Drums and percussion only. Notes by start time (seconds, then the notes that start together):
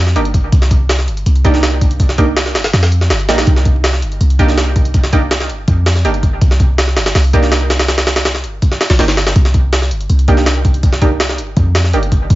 0.07 snare
0.16 closed hi-hat
0.25 closed hi-hat
0.34 kick, closed hi-hat
0.52 kick, closed hi-hat
0.62 snare
0.71 kick, closed hi-hat
0.89 snare, open hi-hat
0.99 snare
1.08 closed hi-hat
1.17 closed hi-hat
1.26 closed hi-hat
1.35 closed hi-hat
1.45 kick, closed hi-hat
1.54 snare
1.63 snare, closed hi-hat
1.81 kick, closed hi-hat
1.91 closed hi-hat
2.00 kick, closed hi-hat
2.09 snare
2.18 kick, closed hi-hat
2.37 snare, closed hi-hat
2.46 snare
2.55 snare, open hi-hat
2.64 snare, open hi-hat
2.73 snare, open hi-hat
2.83 snare, open hi-hat
2.92 closed hi-hat
3.01 snare
3.10 snare, closed hi-hat
3.20 closed hi-hat
3.29 snare, open hi-hat
3.38 snare, open hi-hat
3.47 kick, closed hi-hat
3.56 snare
3.65 kick, closed hi-hat
3.84 snare, open hi-hat
3.93 snare
4.02 closed hi-hat
4.12 closed hi-hat
4.21 closed hi-hat
4.30 closed hi-hat
4.39 kick, closed hi-hat
4.48 snare
4.58 snare, closed hi-hat
4.76 kick, closed hi-hat
4.85 closed hi-hat
4.94 kick, closed hi-hat
5.03 snare
5.13 kick, closed hi-hat
5.31 snare, closed hi-hat
5.40 snare
5.49 closed hi-hat
5.68 kick, closed hi-hat
5.86 snare, open hi-hat
5.96 snare
6.05 closed hi-hat
6.14 closed hi-hat
6.23 kick, closed hi-hat
6.41 kick, closed hi-hat
6.51 snare
6.60 kick, closed hi-hat
6.78 snare, open hi-hat
6.88 snare
6.97 snare, open hi-hat
7.06 snare, open hi-hat
7.15 snare, open hi-hat
7.24 open hi-hat
7.33 kick, closed hi-hat
7.43 snare
7.52 snare, closed hi-hat
7.70 snare, open hi-hat
7.79 snare, open hi-hat
7.88 snare, open hi-hat
7.98 snare, open hi-hat
8.07 snare, open hi-hat
8.16 snare, open hi-hat
8.25 snare, closed hi-hat
8.35 snare
8.44 closed hi-hat
8.62 kick, closed hi-hat
8.72 snare
8.81 snare, open hi-hat
8.90 snare, open hi-hat
8.99 snare, open hi-hat
9.08 snare, open hi-hat
9.17 snare, open hi-hat
9.27 snare, open hi-hat
9.36 kick, closed hi-hat
9.45 snare
9.54 kick, closed hi-hat
9.73 snare, open hi-hat
9.82 snare
9.91 closed hi-hat
10.01 closed hi-hat
10.10 closed hi-hat
10.19 closed hi-hat
10.28 kick, closed hi-hat
10.37 snare
10.46 snare, closed hi-hat
10.65 kick, closed hi-hat
10.74 closed hi-hat
10.83 kick, closed hi-hat
10.93 snare
11.02 kick, closed hi-hat
11.20 snare, closed hi-hat
11.29 snare
11.38 closed hi-hat
11.57 kick, closed hi-hat
11.75 snare, open hi-hat
11.84 snare
11.93 closed hi-hat
12.03 closed hi-hat
12.12 kick, closed hi-hat
12.30 kick, closed hi-hat